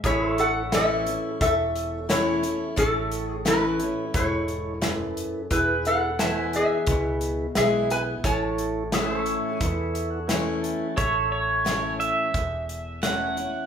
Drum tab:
HH |xxxxxxxx|xxxxxxxx|xxxxxxxx|xxxxxxxx|
SD |--o---o-|--o---o-|--o---o-|--o---o-|
BD |o---o---|o---o---|o---o---|o---o---|

HH |x-xxxxxx|
SD |--o---o-|
BD |o---o---|